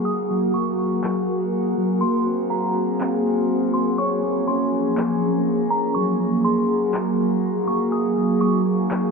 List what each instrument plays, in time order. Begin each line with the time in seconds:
Already playing: ambient pad F#3 A#3 F#4, clean electric guitar A#3, synth texture G#4 F5 F#5 A#5
0.05 clean electric guitar G#4, ambient pad A#4, synth bell D#6
0.30 clean electric guitar F#3
0.54 clean electric guitar A#3, synth bell C#6
0.79 open hi-hat
1.03 clean electric guitar F#3, clap
1.77 clean electric guitar F#3
2.01 ambient pad F#3 C4 G#4, clean electric guitar A#3, synth texture C5 F5, synth bell C6
2.26 clean electric guitar C4
2.50 clean electric guitar G#4, synth bell A#5
3.00 clean electric guitar C4, clap
3.74 clean electric guitar C4, synth bell C6
3.98 ambient pad F3 C#4, clean electric guitar C#5, synth texture C#5 A#5, synth bell C#6
4.23 clean electric guitar A#3
4.47 clean electric guitar C#4, synth bell C6
4.97 clean electric guitar A#3, clap
5.70 clean electric guitar A#3, synth bell A#5
5.94 ambient pad F#3 F#4, clean electric guitar F#3, synth texture F5 F#5, synth bell C#6
6.20 clean electric guitar A#3
6.44 clean electric guitar G#4, synth bell C6
6.94 clean electric guitar A#3, clap
7.67 clean electric guitar A#3, synth bell C#6
7.91 ambient pad D#4, clean electric guitar G#4, synth texture G#5, synth bell D#6
8.17 clean electric guitar F#3
8.41 clean electric guitar A#3, synth bell C#6
8.66 open hi-hat
8.90 clean electric guitar F#3, clap